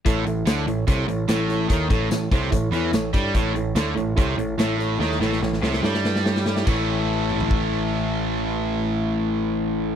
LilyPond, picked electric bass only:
\new Staff \with { instrumentName = "Picked electric bass" } { \clef bass \time 4/4 \key a \major \tempo 4 = 144 a,,8 a,,8 d,8 a,,8 c,8 a,,8 a,,4 | dis,8 a,,8 a,,8 c,8 a,,8 e,8 a,,8 g,8 | a,,8 a,,8 d,8 a,,8 c,8 a,,8 a,,4 | dis,8 a,,8 a,,8 c,8 g,2 |
a,,1~ | a,,1 | }